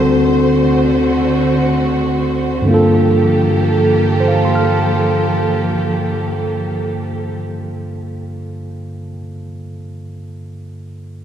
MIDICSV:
0, 0, Header, 1, 3, 480
1, 0, Start_track
1, 0, Key_signature, -2, "minor"
1, 0, Tempo, 1318681
1, 445, Tempo, 1456311
1, 925, Tempo, 1511335
1, 926, Time_signature, 4, 2, 24, 8
1, 3646, End_track
2, 0, Start_track
2, 0, Title_t, "Tine electric piano"
2, 0, Program_c, 0, 4
2, 0, Note_on_c, 0, 38, 44
2, 0, Note_on_c, 0, 50, 39
2, 0, Note_on_c, 0, 60, 38
2, 0, Note_on_c, 0, 66, 36
2, 0, Note_on_c, 0, 69, 44
2, 46, Control_c, 0, 64, 127
2, 906, Note_on_c, 0, 43, 53
2, 911, Note_off_c, 0, 50, 0
2, 915, Note_on_c, 0, 50, 47
2, 923, Note_off_c, 0, 38, 0
2, 924, Note_on_c, 0, 58, 47
2, 926, Note_off_c, 0, 60, 0
2, 929, Control_c, 0, 64, 0
2, 930, Note_off_c, 0, 66, 0
2, 931, Note_off_c, 0, 69, 0
2, 934, Note_on_c, 0, 65, 46
2, 945, Note_on_c, 0, 69, 58
2, 987, Control_c, 0, 64, 127
2, 1409, Note_on_c, 0, 72, 37
2, 1433, Note_on_c, 0, 77, 34
2, 1458, Note_on_c, 0, 81, 33
2, 1487, Note_on_c, 0, 84, 32
2, 1520, Note_on_c, 0, 89, 31
2, 2410, Note_off_c, 0, 43, 0
2, 2419, Note_off_c, 0, 50, 0
2, 2428, Note_off_c, 0, 58, 0
2, 2438, Note_off_c, 0, 65, 0
2, 2448, Note_off_c, 0, 69, 0
2, 2900, Note_off_c, 0, 72, 0
2, 2925, Note_off_c, 0, 77, 0
2, 2949, Note_off_c, 0, 81, 0
2, 2978, Note_off_c, 0, 84, 0
2, 3012, Note_off_c, 0, 89, 0
2, 3643, Control_c, 0, 64, 0
2, 3646, End_track
3, 0, Start_track
3, 0, Title_t, "String section"
3, 0, Program_c, 1, 48
3, 0, Note_on_c, 1, 50, 58
3, 0, Note_on_c, 1, 57, 52
3, 0, Note_on_c, 1, 66, 52
3, 0, Note_on_c, 1, 72, 74
3, 913, Note_off_c, 1, 72, 0
3, 919, Note_off_c, 1, 66, 0
3, 920, Note_off_c, 1, 50, 0
3, 920, Note_off_c, 1, 57, 0
3, 926, Note_on_c, 1, 53, 61
3, 926, Note_on_c, 1, 67, 56
3, 927, Note_on_c, 1, 58, 54
3, 927, Note_on_c, 1, 69, 68
3, 2417, Note_off_c, 1, 53, 0
3, 2417, Note_off_c, 1, 67, 0
3, 2418, Note_off_c, 1, 58, 0
3, 2418, Note_off_c, 1, 69, 0
3, 3646, End_track
0, 0, End_of_file